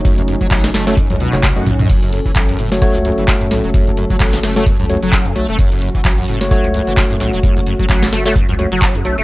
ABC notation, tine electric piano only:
X:1
M:4/4
L:1/16
Q:"Swing 16ths" 1/4=130
K:F#dor
V:1 name="Tine electric piano"
[A,Fc]6- [A,Fc] [A,Fc] z3 [A,Fc] z [A,Fd] z2 | z6 z [A,Fc] [A,Fc]8- | [A,Fc]6- [A,Fc] [A,Fc] z2 [A,Fc] z3 [A,Fc] z | z6 z [A,Fc] [A,Fc]8- |
[A,Fc]6- [A,Fc] [A,Fc] z2 [A,Fc] z3 [A,Fc] z |]